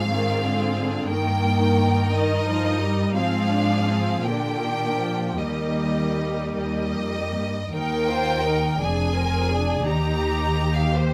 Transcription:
0.00 1.06 G#2 soft
0.00 1.05 F5 medium
0.10 0.43 D#3 medium
0.10 1.10 C4 soft
0.10 1.11 F4 soft
0.10 1.09 G#4 soft
0.43 0.76 D3 soft
0.77 1.10 D3 medium
1.09 3.12 G2 soft
1.09 2.11 D#3 soft
1.09 2.12 A#3 medium
1.09 3.12 D#4 soft
1.09 3.16 A#4 soft
1.09 2.10 G5 medium
2.12 2.46 D#3 medium
2.12 3.16 D#4 medium
2.12 3.16 D#5 medium
2.46 2.80 F3 soft
2.81 3.16 G3 soft
3.15 4.22 G#2 soft
3.15 4.24 F3 medium
3.15 3.50 C4 medium
3.15 4.23 C4 soft
3.15 4.23 G#4 medium
3.15 4.23 F5 medium
3.51 3.88 D4 medium
3.87 4.24 C4 soft
4.24 5.36 A#2 soft
4.24 4.61 D3 soft
4.24 5.37 A#3 soft
4.24 5.39 D4 soft
4.24 5.37 G4 soft
4.24 5.38 G5 medium
4.61 4.99 D#3 soft
4.99 5.38 F3 soft
5.37 6.48 D#2 soft
5.37 7.52 G3 soft
5.37 7.48 A#3 soft
5.37 7.48 D#4 soft
5.37 7.48 G4 soft
5.37 6.55 D#5 soft
6.56 6.93 D#2 soft
6.56 7.69 D#5 medium
6.95 7.35 F2 soft
7.34 7.73 G2 soft
7.72 8.77 D#2 soft
7.72 8.07 D#4 soft
7.72 8.07 A#4 medium
7.72 8.78 A#4 soft
7.72 8.81 G5 medium
8.09 8.46 F4 medium
8.09 8.45 C5 medium
8.45 8.80 D#4 soft
8.45 8.81 A#4 medium
8.80 9.86 F1 soft
8.80 9.86 F2 soft
8.80 9.15 D4 soft
8.80 9.84 G#4 soft
8.80 9.16 G#4 soft
8.80 9.86 G#5 medium
9.14 9.49 C4 medium
9.14 9.51 A#4 medium
9.50 9.86 D4 medium
9.50 9.86 G#4 soft
9.85 11.14 D#2 soft
9.85 11.14 D#2 medium
9.85 10.95 D#4 soft
9.85 10.93 G4 soft
9.85 10.96 G4 medium
9.85 10.76 A#5 medium
10.77 10.96 F5 medium
10.95 11.14 G4 soft
10.95 11.14 C5 medium

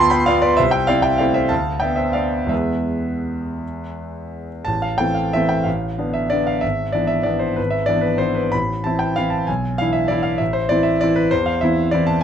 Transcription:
0.00 0.61 D2 medium
0.00 0.25 B3 medium
0.00 0.25 F4 medium
0.00 0.11 G5 medium
0.00 0.11 A5 medium
0.00 0.10 B5 loud
0.00 0.11 C6 loud
0.10 0.26 G5 medium
0.10 0.27 B5 medium
0.26 0.56 B3 medium
0.26 0.55 F4 medium
0.26 0.40 D5 medium
0.26 0.43 F5 loud
0.42 0.57 B4 medium
0.42 0.58 D5 medium
0.57 0.88 C2 medium
0.57 0.72 C5 medium
0.57 0.71 E5 medium
0.71 0.87 E5 medium
0.71 0.88 G5 medium
0.87 1.17 C4 medium
0.87 1.18 E4 medium
0.87 1.03 D5 medium
0.87 1.04 F5 loud
1.02 1.19 E5 medium
1.02 1.19 G5 medium
1.18 1.48 A3 soft
1.18 1.49 C4 medium
1.18 1.49 E4 medium
1.18 1.34 D5 medium
1.18 1.35 F5 medium
1.34 1.50 C5 medium
1.34 1.50 E5 medium
1.49 1.81 D2 medium
1.49 1.79 F5 medium
1.49 1.81 A5 medium
1.80 2.12 B3 soft
1.80 2.12 D4 medium
1.80 1.94 E5 medium
1.80 1.97 G5 medium
1.96 2.13 C5 medium
1.96 2.14 E5 medium
2.13 2.48 B3 soft
2.13 2.47 D4 soft
2.13 2.48 D5 medium
2.13 2.50 F5 medium
2.47 4.62 E2 medium
2.47 4.63 G#3 soft
2.47 4.64 B3 soft
2.47 4.47 B4 medium
2.47 4.50 E5 medium
4.65 5.00 A1 medium
4.65 4.83 A5 medium
4.82 5.00 F5 medium
4.98 5.31 E3 soft
4.98 5.30 A3 soft
4.98 5.31 C4 soft
4.98 5.16 G5 medium
5.15 5.33 F5 medium
5.33 5.64 E3 soft
5.33 5.64 A3 soft
5.33 5.64 C4 soft
5.33 5.50 E5 medium
5.49 5.65 G5 medium
5.64 5.98 A1 medium
5.64 6.14 F5 medium
5.98 6.29 D3 soft
5.98 6.29 B3 soft
5.98 6.29 D4 soft
6.13 6.31 E5 medium
6.30 6.61 D3 soft
6.30 6.61 B3 soft
6.30 6.61 D4 soft
6.30 6.47 D5 medium
6.47 6.63 F5 medium
6.61 6.94 G#1 soft
6.61 6.93 E5 medium
6.92 7.23 E3 soft
6.92 7.24 B3 soft
6.92 7.23 D4 medium
6.92 7.09 D5 medium
7.07 7.25 E5 medium
7.23 7.54 E3 soft
7.23 7.55 B3 soft
7.23 7.55 D4 soft
7.23 7.41 D5 medium
7.39 7.57 C5 medium
7.56 7.89 G#1 soft
7.56 7.73 B4 medium
7.70 7.88 E5 medium
7.86 8.18 E3 soft
7.86 8.18 B3 soft
7.86 8.18 D4 medium
7.86 8.03 D5 medium
8.01 8.19 B4 medium
8.18 8.49 E3 soft
8.18 8.50 B3 soft
8.18 8.50 D4 soft
8.18 8.36 C5 medium
8.35 8.52 B4 medium
8.52 8.85 A1 medium
8.52 8.84 B5 medium
8.84 9.14 E3 soft
8.84 9.14 C4 medium
8.84 9.14 E4 soft
8.84 9.00 A5 medium
8.99 9.16 G5 medium
9.16 9.45 E3 soft
9.16 9.46 C4 soft
9.16 9.46 E4 soft
9.16 9.32 F5 medium
9.30 9.47 A5 medium
9.47 9.79 B1 medium
9.47 9.79 G#5 medium
9.78 10.08 E3 soft
9.78 10.08 D4 soft
9.78 10.08 E4 medium
9.78 9.94 F5 medium
9.93 10.09 E5 medium
10.08 10.38 E3 soft
10.08 10.38 D4 soft
10.08 10.38 E4 medium
10.08 10.24 D5 medium
10.23 10.39 F5 medium
10.38 10.69 A1 medium
10.38 10.54 E5 medium
10.53 10.69 C5 medium
10.69 10.99 E3 soft
10.69 10.99 C4 medium
10.69 10.99 E4 medium
10.69 10.85 D5 medium
10.83 11.00 E5 medium
11.01 11.30 E3 medium
11.01 11.30 C4 soft
11.01 11.30 E4 medium
11.01 11.17 D5 loud
11.16 11.31 B4 medium
11.31 11.61 E2 medium
11.31 11.46 C5 medium
11.46 11.61 F5 medium
11.61 11.90 E3 soft
11.61 11.91 C4 medium
11.61 11.91 E4 medium
11.61 11.93 E5 medium
11.91 12.21 E3 medium
11.91 12.21 C4 medium
11.91 12.21 E4 medium
11.91 12.08 D5 medium
12.07 12.22 A5 medium

